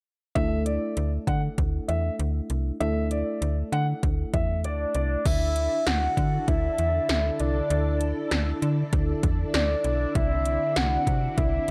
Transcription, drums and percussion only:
0.36 kick, closed hi-hat
0.66 closed hi-hat
0.97 closed hi-hat
1.27 kick, closed hi-hat
1.58 kick, closed hi-hat
1.89 closed hi-hat
2.19 closed hi-hat
2.50 closed hi-hat
2.81 closed hi-hat
3.11 closed hi-hat
3.42 closed hi-hat
3.73 closed hi-hat
4.03 kick, closed hi-hat
4.34 kick, closed hi-hat
4.64 closed hi-hat
4.94 closed hi-hat
5.25 kick, closed hi-hat, crash
5.56 closed hi-hat
5.87 snare, closed hi-hat
6.17 kick, closed hi-hat
6.48 kick, closed hi-hat
6.78 closed hi-hat
7.09 snare, closed hi-hat
7.40 closed hi-hat
7.70 closed hi-hat
8.01 closed hi-hat
8.31 snare, closed hi-hat
8.62 closed hi-hat
8.93 kick, closed hi-hat
9.23 kick, closed hi-hat
9.54 snare, closed hi-hat
9.84 closed hi-hat
10.15 kick, closed hi-hat
10.45 closed hi-hat
10.76 snare, closed hi-hat
11.07 kick, closed hi-hat
11.38 kick, closed hi-hat

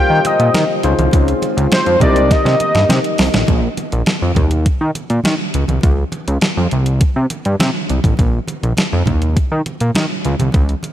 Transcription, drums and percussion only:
0.25 closed hi-hat, muted conga
0.40 closed hi-hat
0.54 snare, closed hi-hat, high conga
0.83 closed hi-hat
0.99 closed hi-hat, high conga
1.11 kick, closed hi-hat, muted conga
1.28 closed hi-hat
1.42 closed hi-hat, muted conga
1.58 closed hi-hat
1.72 snare, closed hi-hat, high conga
1.86 closed hi-hat
2.00 kick, closed hi-hat, low conga
2.16 closed hi-hat
2.31 kick, snare, closed hi-hat, muted conga
2.46 snare, closed hi-hat
2.60 closed hi-hat, muted conga
2.75 snare, closed hi-hat
2.89 snare, closed hi-hat, high conga
3.04 closed hi-hat
3.18 snare, open hi-hat
3.34 snare, closed hi-hat, high conga
3.47 kick, closed hi-hat, muted conga
3.77 closed hi-hat, muted conga
3.92 closed hi-hat
4.06 snare, closed hi-hat, high conga
4.35 kick, closed hi-hat, low conga
4.51 closed hi-hat
4.66 kick, closed hi-hat
4.95 closed hi-hat, muted conga
5.10 closed hi-hat
5.24 snare, closed hi-hat, high conga
5.54 closed hi-hat
5.68 closed hi-hat, high conga
5.81 kick, closed hi-hat, muted conga
6.12 closed hi-hat, muted conga
6.28 closed hi-hat
6.41 snare, closed hi-hat, high conga
6.71 closed hi-hat
6.86 closed hi-hat
7.00 kick, closed hi-hat, muted conga
7.30 closed hi-hat, muted conga
7.45 closed hi-hat
7.60 snare, closed hi-hat, high conga
7.89 closed hi-hat
8.04 kick, closed hi-hat, high conga
8.17 kick, closed hi-hat, muted conga
8.48 closed hi-hat, muted conga
8.63 closed hi-hat
8.77 snare, closed hi-hat, high conga
9.06 kick, closed hi-hat, low conga
9.22 closed hi-hat
9.37 kick, closed hi-hat
9.66 closed hi-hat, muted conga
9.80 closed hi-hat
9.95 snare, closed hi-hat, high conga
10.25 closed hi-hat
10.39 closed hi-hat, high conga
10.52 kick, closed hi-hat, muted conga
10.69 closed hi-hat
10.83 closed hi-hat, muted conga

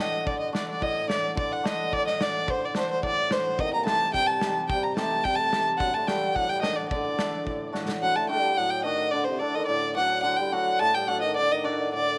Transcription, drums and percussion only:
0.27 kick
0.55 snare
0.82 kick
1.10 snare
1.37 kick
1.66 snare
1.93 kick
2.07 snare
2.21 snare
2.48 kick
2.75 snare
3.03 kick
3.31 snare
3.59 kick
3.87 snare
4.14 kick
4.41 snare
4.70 kick
4.97 snare
5.25 kick
5.53 snare
5.80 kick
6.08 snare
6.36 kick
6.63 snare
6.91 kick
7.19 snare
7.47 kick
7.75 snare
7.89 snare

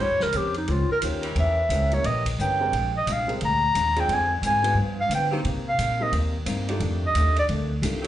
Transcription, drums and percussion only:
0.20 snare
0.33 hi-hat pedal, ride
0.54 ride
0.68 ride
1.02 hi-hat pedal, ride
1.23 ride
1.36 ride
1.70 hi-hat pedal, ride
1.92 ride
2.04 ride
2.26 kick, ride
2.39 hi-hat pedal
2.73 ride
3.07 hi-hat pedal, ride
3.29 ride
3.41 ride
3.75 hi-hat pedal, ride
3.96 ride
4.09 ride
4.43 hi-hat pedal, ride
4.64 ride
5.11 hi-hat pedal, ride
5.45 ride
5.79 hi-hat pedal, ride
6.13 ride
6.46 hi-hat pedal, ride
6.69 ride
6.80 ride
7.15 hi-hat pedal, ride
7.36 ride
7.49 ride
7.83 hi-hat pedal, ride

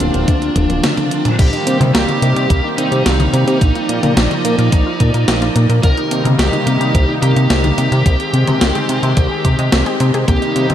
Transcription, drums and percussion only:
0.00 closed hi-hat
0.14 closed hi-hat
0.28 kick, closed hi-hat
0.42 closed hi-hat
0.56 kick, closed hi-hat, high tom
0.70 closed hi-hat, high tom
0.84 snare, closed hi-hat, mid tom
0.97 snare, closed hi-hat, mid tom
1.11 closed hi-hat
1.25 closed hi-hat, mid tom
1.39 kick, closed hi-hat, crash
1.53 closed hi-hat
1.67 closed hi-hat
1.81 closed hi-hat, mid tom
1.95 snare, closed hi-hat
2.09 closed hi-hat, mid tom
2.22 closed hi-hat
2.36 closed hi-hat
2.50 kick, closed hi-hat
2.78 closed hi-hat
2.92 closed hi-hat
3.06 snare, closed hi-hat
3.20 closed hi-hat, mid tom
3.34 closed hi-hat
3.48 closed hi-hat
3.61 kick, closed hi-hat
3.75 closed hi-hat
3.89 closed hi-hat
4.03 closed hi-hat, mid tom
4.17 snare, closed hi-hat
4.31 closed hi-hat, mid tom
4.45 closed hi-hat
4.59 closed hi-hat
4.72 kick, closed hi-hat
5.00 kick, closed hi-hat
5.14 closed hi-hat
5.28 snare, closed hi-hat
5.42 snare, closed hi-hat
5.56 closed hi-hat
5.70 closed hi-hat
5.83 kick, closed hi-hat
5.97 closed hi-hat
6.11 closed hi-hat
6.25 closed hi-hat, mid tom
6.39 snare, closed hi-hat
6.53 closed hi-hat, mid tom
6.67 closed hi-hat
6.81 closed hi-hat
6.95 kick, closed hi-hat
7.23 closed hi-hat
7.36 closed hi-hat
7.50 snare, closed hi-hat
7.64 closed hi-hat, mid tom
7.78 closed hi-hat
7.92 closed hi-hat
8.06 kick, closed hi-hat
8.20 closed hi-hat
8.34 closed hi-hat
8.47 closed hi-hat, mid tom
8.61 snare, closed hi-hat
8.75 closed hi-hat, mid tom
8.89 closed hi-hat
9.03 closed hi-hat
9.17 kick, closed hi-hat
9.45 kick, closed hi-hat
9.59 closed hi-hat
9.72 snare, closed hi-hat
9.86 snare, closed hi-hat
10.00 closed hi-hat
10.14 closed hi-hat
10.28 kick, closed hi-hat
10.42 closed hi-hat
10.56 closed hi-hat
10.70 closed hi-hat, mid tom

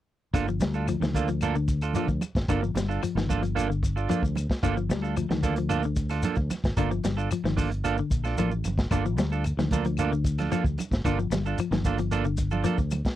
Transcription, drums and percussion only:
0.34 kick, closed hi-hat, high conga, claves, shekere
0.48 shekere
0.60 snare, closed hi-hat, high conga, shekere
0.74 shekere
0.87 closed hi-hat, high conga, claves, shekere
1.00 snare, high conga, shekere
1.14 kick, closed hi-hat, shekere
1.28 closed hi-hat, shekere
1.41 closed hi-hat, high conga, claves, shekere
1.55 shekere
1.68 kick, closed hi-hat, shekere
1.81 closed hi-hat, claves, shekere
1.93 closed hi-hat, high conga, shekere
2.08 kick, shekere
2.21 closed hi-hat, high conga, claves, shekere
2.35 kick, snare, shekere
2.48 kick, closed hi-hat, high conga, claves, shekere
2.64 shekere
2.76 snare, closed hi-hat, high conga, shekere
2.91 shekere
3.02 closed hi-hat, high conga, claves, shekere
3.16 snare, high conga, shekere
3.28 kick, closed hi-hat, high conga, shekere
3.43 closed hi-hat, shekere
3.56 closed hi-hat, high conga, claves, shekere
3.72 shekere
3.83 kick, closed hi-hat, shekere
3.97 claves, shekere
4.09 closed hi-hat, high conga, shekere
4.23 kick, shekere
4.35 closed hi-hat, high conga, claves, shekere
4.50 kick, snare, shekere
4.63 kick, closed hi-hat, high conga, claves, shekere
4.77 shekere
4.90 snare, closed hi-hat, high conga, shekere
5.04 shekere
5.16 closed hi-hat, high conga, claves, shekere
5.30 snare, high conga, shekere
5.43 kick, closed hi-hat, shekere
5.56 closed hi-hat, shekere
5.69 closed hi-hat, high conga, claves, shekere
5.83 shekere
5.96 kick, closed hi-hat, shekere
6.09 snare, closed hi-hat, claves, shekere
6.22 closed hi-hat, high conga, shekere
6.36 kick, shekere
6.50 snare, closed hi-hat, high conga, claves, shekere
6.64 kick, snare, shekere
6.77 kick, closed hi-hat, high conga, claves, shekere
6.91 shekere
7.04 snare, closed hi-hat, high conga, shekere
7.19 shekere
7.31 closed hi-hat, high conga, claves, shekere
7.45 snare, high conga, shekere
7.57 kick, open hi-hat, shekere
7.72 closed hi-hat, shekere
7.85 closed hi-hat, high conga, claves, shekere
7.98 shekere
8.11 kick, closed hi-hat, shekere
8.25 snare, claves, shekere
8.38 closed hi-hat, high conga, shekere
8.51 shekere
8.64 closed hi-hat, high conga, claves, shekere
8.78 kick, snare, shekere
8.91 kick, closed hi-hat, high conga, claves, shekere
9.06 shekere
9.18 snare, closed hi-hat, high conga, shekere
9.32 shekere
9.44 closed hi-hat, high conga, claves, shekere
9.59 snare, high conga, shekere
9.71 kick, closed hi-hat, high conga, shekere
9.85 closed hi-hat, shekere
9.97 closed hi-hat, claves, shekere
10.13 shekere
10.24 kick, closed hi-hat, shekere
10.38 snare, closed hi-hat, high conga, claves, shekere
10.52 closed hi-hat, high conga, shekere
10.64 kick, shekere
10.78 closed hi-hat, high conga, claves, shekere
10.91 kick, snare, shekere
11.05 kick, closed hi-hat, high conga, claves, shekere
11.19 shekere
11.31 snare, closed hi-hat, high conga, shekere
11.46 shekere
11.58 closed hi-hat, high conga, claves, shekere
11.72 snare, high conga, shekere
11.84 kick, closed hi-hat, shekere
11.98 closed hi-hat, shekere
12.11 closed hi-hat, high conga, claves, shekere
12.25 shekere
12.37 kick, closed hi-hat, shekere
12.51 high conga, claves, shekere
12.64 closed hi-hat, high conga, shekere
12.78 kick, shekere
12.91 closed hi-hat, high conga, claves, shekere
13.05 kick, snare, shekere

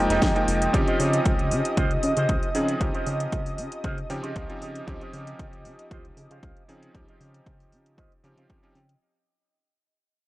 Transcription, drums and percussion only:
0.10 snare, closed hi-hat
0.22 kick, snare, closed hi-hat
0.36 closed hi-hat
0.48 open hi-hat
0.62 closed hi-hat
0.74 kick, closed hi-hat
0.88 closed hi-hat
1.00 open hi-hat
1.13 closed hi-hat
1.25 kick, closed hi-hat
1.39 closed hi-hat
1.51 open hi-hat
1.65 closed hi-hat
1.77 kick, closed hi-hat
1.91 closed hi-hat
2.03 open hi-hat
2.17 closed hi-hat
2.29 kick, closed hi-hat
2.43 closed hi-hat
2.55 open hi-hat
2.68 closed hi-hat
2.81 kick, closed hi-hat
2.95 closed hi-hat
3.06 open hi-hat
3.20 closed hi-hat
3.32 kick, closed hi-hat
3.46 open hi-hat
3.58 open hi-hat
3.72 closed hi-hat
3.84 kick, closed hi-hat
3.98 closed hi-hat
4.10 open hi-hat
4.24 closed hi-hat
4.36 kick, closed hi-hat
4.50 closed hi-hat
4.62 open hi-hat
4.75 closed hi-hat
4.88 kick, closed hi-hat
5.01 closed hi-hat
5.13 open hi-hat
5.27 closed hi-hat
5.39 kick, closed hi-hat
5.53 closed hi-hat
5.65 open hi-hat
5.79 closed hi-hat
5.91 kick, closed hi-hat
6.05 closed hi-hat
6.17 open hi-hat
6.31 closed hi-hat
6.43 kick, closed hi-hat
6.57 closed hi-hat
6.69 open hi-hat
6.83 closed hi-hat
6.95 kick, closed hi-hat
7.08 closed hi-hat
7.21 open hi-hat
7.34 closed hi-hat
7.46 kick, closed hi-hat
7.60 open hi-hat
7.72 open hi-hat
7.86 closed hi-hat
7.98 kick, closed hi-hat
8.12 closed hi-hat
8.24 open hi-hat
8.38 closed hi-hat
8.50 kick, closed hi-hat
8.63 closed hi-hat
8.75 open hi-hat
8.89 closed hi-hat

